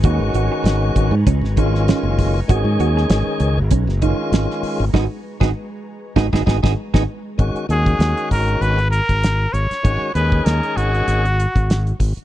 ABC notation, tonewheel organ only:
X:1
M:4/4
L:1/16
Q:"Swing 16ths" 1/4=98
K:G#dor
V:1 name="Tonewheel organ"
[D,G,CF]8 z2 [D,G,CE]6 | [D,G,CG]8 z2 [D,G,CE]6 | [G,B,D] z2 [G,B,D] z4 [G,B,D] [G,B,D] [G,B,D] [G,B,D] z [G,B,D] z2 | [D,G,CF]2 [D,G,CF]8 z6 |
[D,G,CF]2 [D,G,CG]8 z6 |]